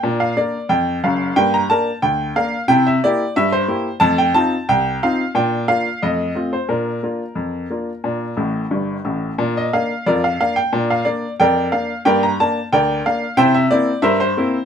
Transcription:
<<
  \new Staff \with { instrumentName = "Upright piano" } { \time 2/4 \key bes \major \tempo 4 = 90 g''16 f''16 d''8 g''8 f''8 | g''16 bes''16 a''8 g''8 f''8 | g''16 e''16 d''8 e''16 c''8. | a''16 g''16 a''8 g''8 f''8 |
g''8 f''8 ees''8. c''16 | bes'2~ | bes'4. r8 | r16 ees''16 f''8 <f' bes' d''>16 f''16 f''16 g''16~ |
g''16 f''16 d''8 <bes' d'' g''>8 f''8 | <bes' d'' g''>16 bes''16 a''8 <bes' d'' g''>8 f''8 | <c'' e'' g''>16 e''16 d''8 <bes' c'' e''>16 c''8. | }
  \new Staff \with { instrumentName = "Upright piano" } { \time 2/4 \key bes \major <bes, d'>8 <bes d' bes'>8 f,8 <ges,, ges,>8 | <g, bes>8 <bes d' bes'>8 d,8 <bes d' bes'>8 | <c e'>8 <bes e' g'>8 g,8 <bes e' g'>8 | <f, a>8 <c' ees' f'>8 c,8 <c' ees' f'>8 |
<bes, d'>8 <bes d' f'>8 <f, a>8 <a c' f'>8 | <bes, d'>8 <bes d' f'>8 f,8 <bes d' f'>8 | <bes, d'>8 <a,, a,>8 <g,, g,>8 <a,, a,>8 | <bes, d'>8 <bes d'>8 f,8 <bes d'>8 |
<bes, d'>8 <bes d'>8 f,8 <bes d'>8 | <g, bes>8 <bes d'>8 d,8 <bes d'>8 | <c e'>8 <bes c' e'>8 g,8 <bes c' e'>8 | }
>>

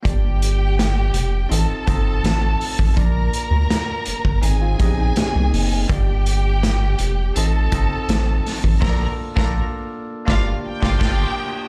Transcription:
<<
  \new Staff \with { instrumentName = "Violin section" } { \time 4/4 \key g \minor \tempo 4 = 82 r1 | r1 | r1 | r2 r8 g''4. | }
  \new Staff \with { instrumentName = "String section" } { \time 4/4 \key g \minor <g' g''>2 <a' a''>2 | <bes' bes''>2 <aes' aes''>2 | <g' g''>2 <a' a''>2 | <bes' bes''>8 r16 <bes' bes''>8 r8. <f' f''>8 r16 <f' f''>16 <f' f''>8 r8 | }
  \new Staff \with { instrumentName = "Tine electric piano" } { \time 4/4 \key g \minor <bes d' f' g' d''>2 <c' ees' f' a' ees''>8 <c' ees' f' a' ees''>4. | <bes d' f' bes' d''>2 <c' ees' aes' ees''>8 <b c' ees' aes' ees''>4. | <bes d' f' g' d''>2 <c' ees' f' a' ees''>8 <c' ees' f' a' ees''>4. | <bes d' f' a' d''>8 r16 <bes d' f' a' d''>8 r8. <bes d' f' g' d''>8 r16 <bes d' f' g' d''>16 <bes d' f' g' d''>8 r8 | }
  \new Staff \with { instrumentName = "Clean electric guitar" } { \time 4/4 \key g \minor r1 | r2 r16 <c' f'>16 <d' g'>16 <ees' aes'>16 <d' g'>16 <bes ees'>8. | r1 | r1 | }
  \new Staff \with { instrumentName = "Analog synth bass" } { \clef bass \time 4/4 \key g \minor g,,4. f,,8 a,,16 g,,16 g,,8 a,,8 r16 a,,16 | bes,,8 r16 d,16 r8 g,,16 g,,16 aes,,8 bes,,8 r16 c,16 fis,,8 | g,,4. f,,8 a,,8 g,,16 r16 a,,8 r16 a,,16 | bes,,8 r16 bes,,8 r8. g,,8 r16 g,,16 g,,8 r8 | }
  \new DrumStaff \with { instrumentName = "Drums" } \drummode { \time 4/4 <hh bd>8 hh8 <hh sn>8 hh8 hh8 <hh bd>8 <hh sn>8 hho16 bd16 | <hh bd>8 hh8 <hh sn>8 hh16 bd16 hh8 <hh bd>8 <hh sn>8 hho8 | <hh bd>8 hh8 <hh sn>8 hh8 hh8 <hh bd>8 <hh sn>8 <hho sn>16 bd16 | <cymc bd sn>8. <bd sn>16 r4 <bd sn>8. <bd sn>16 <cymc bd sn>4 | }
>>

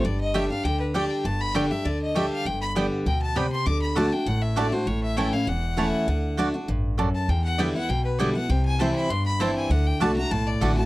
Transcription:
<<
  \new Staff \with { instrumentName = "Fiddle" } { \time 4/4 \key g \major \tempo 4 = 199 d''8 ees''8 e''8 f''8 g''8 b'8 d''8 g''8 | a''8 b''8 g''8 e''8 d''8 ees''8 e''8 f''8 | g''8 b''8 r4 g''8 a''8 b''8 c'''8 | d'''8 b''8 a''8 g''8 fis''8 e''8 d''8 c''8 |
cis''8 e''8 g''8 f''8 fis''2~ | fis''4 r2 r8 a''8 | g''8 fis''8 d''8 fis''8 g''8 b'8 d''8 fis''8 | g''8 aes''8 a''8 b''8 c'''8 b''8 a''8 aes''8 |
fis''8 g''8 a''8 bes''8 a''8 d''8 fis''8 a''8 | }
  \new Staff \with { instrumentName = "Mandolin" } { \time 4/4 \key g \major r4 <a g' d'' g''>8 r4. <a g' d'' g''>8 r8 | r4 <a g' d'' g''>8 r4. <a g' d'' g''>8 r8 | r4 <b g' d'' g''>8 r4. <b g' d'' g''>8 r8 | r4 <a fis' d'' a''>8 r4. <a fis' d'' a''>8 r8 |
r4 <a e' cis'' a''>8 r4. <a e' cis'' a''>8 r8 | r4 <a fis' d'' a''>8 r4. <a fis' d'' a''>8 r8 | r4 <b e' d'' g''>8 r4. <b e' d'' g''>8 r8 | r4 <c' e' c'' g''>8 r4. <c' e' c'' g''>8 r8 |
r4 <a fis' d'' a''>8 r4. <a fis' d'' a''>8 r8 | }
  \new Staff \with { instrumentName = "Steel-string acoustic guitar" } { \time 4/4 \key g \major << { r4 <d g d' g'>8 <d' g'>8 r4 <d g d' g'>4 | r4 <d g d' g'>8 <d' g'>8 r4 <d g d' g'>4 | r4 <d g b g'>4 r2 | r4 <d a d' fis'>8 <d' fis'>8 r4 <d a d' fis'>8 <d' fis'>8 |
r4 <e a cis' e'>8 <cis' e'>8 r4 <e a cis' e'>4 | r4 <d a d' fis'>8 <d' fis'>8 r2 | r4 <d g b e'>8 <b e'>8 r4 <d g b e'>8 <b e'>8 | r4 <e g c' e'>4 r4 <e g c' e'>4 |
r4 <d a d' fis'>8 <d' fis'>8 r4 <d a d' fis'>8 <d' fis'>8 | } \\ { g,2 d2 | g,2 d2 | g,2 b,4 c4 | d2 a,2 |
a,2 e,2 | d2 g,4 fis,4 | e,2 b,2 | c2 g,2 |
d2 a,2 | } >> }
  \new Staff \with { instrumentName = "Upright bass" } { \clef bass \time 4/4 \key g \major g,,2 d,2 | g,,2 d,2 | g,,2 d,2 | d,2 a,,2 |
a,,2 e,,2 | d,2 a,,2 | e,2 b,,2 | c,2 g,,2 |
d,4 c,4 b,,4 a,,4 | }
>>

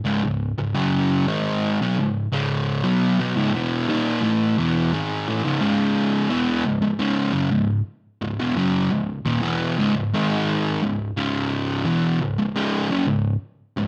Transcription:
\new Staff \with { instrumentName = "Distorted electric guitar" } { \clef bass \time 4/4 \key cis \minor \tempo 4 = 86 <cis, gis,>16 <cis, gis,>8 <cis, gis,>16 <fis, cis fis>8. <gis, dis gis>8. <b, fis>16 <cis, gis,>8 <cis, gis, cis>8. | <b, fis b>8 <b, fis>16 <cis, gis,>16 <e, b, e>8 <dis, ais, dis>8 <a, e a>8 <e, b, e>8 <gis, dis gis>8 <a, e>16 <cis, gis,>16 | <cis, gis, cis>4 <e, b, e>8 <cis, gis,>16 <cis, gis,>16 <cis, gis, cis>8 <fis, cis>16 <cis, gis,>8 r8 <cis, gis,>16 | <e, b,>16 <fis, cis fis>8 <cis, gis,>8 <dis, ais,>16 <e, b, e>8 <cis, gis,>16 <cis, gis,>16 <gis, dis gis>4 <cis, gis,>8 |
<cis, gis, cis>4 <e, b, e>8 <cis, gis,>16 <cis, gis,>16 <cis, gis, cis>8 <fis, cis>16 <cis, gis,>8 r8 <cis, gis,>16 | }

